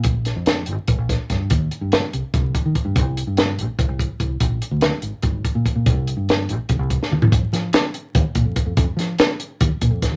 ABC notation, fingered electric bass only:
X:1
M:7/8
L:1/16
Q:1/4=144
K:Cm
V:1 name="Fingered electric bass" clef=bass
B,,,3 F,,3 A,,, z B,,, B,,,2 z G,,2 | E,,2 z G,,2 z C,, z C,,2 z E, z G,, | C,,3 G,,3 B,,, z C,, C,,2 z C,,2 | B,,,2 z D,,2 z A,,, z A,,,2 z B,, z B,, |
C,,3 G,,3 B,,, z C,, C,,2 z E,,2 | F,, z F,2 z4 E,, z B,, F,, z F,, | F,, z F,2 z4 E,, z B,, F,, z E,, |]